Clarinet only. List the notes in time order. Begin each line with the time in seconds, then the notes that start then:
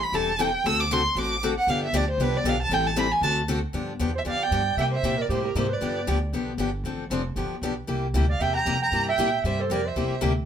4.15 C5
4.27 D5
4.41 D5
4.78 E5
4.91 C5
5.18 A#4
5.29 G4
5.44 G4
5.56 G4
5.69 B4
8.29 D5
8.40 E5
8.55 G5
8.82 G5
9.09 E5
9.46 C5
9.60 A4
9.72 A#4
9.85 C5